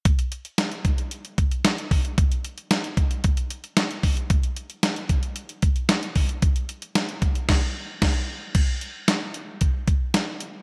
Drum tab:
CC |----------------|----------------|----------------|--------x---x---|
HH |xxxxxxxxxxxxxxox|xxxxxxxxxxxxxxox|xxxxxxxxxxxxxxox|xxxxxxxx--------|
SD |----o-------o---|----o-------o---|----o-------o---|----o---o---o---|
BD |o-----o---o---o-|o-----o-o-----o-|o-----o---o---o-|o-----o-o---o---|

CC |x---------------|
HH |x-x-x-x-x-x-x-x-|
SD |----o-------o---|
BD |o-------o-o-----|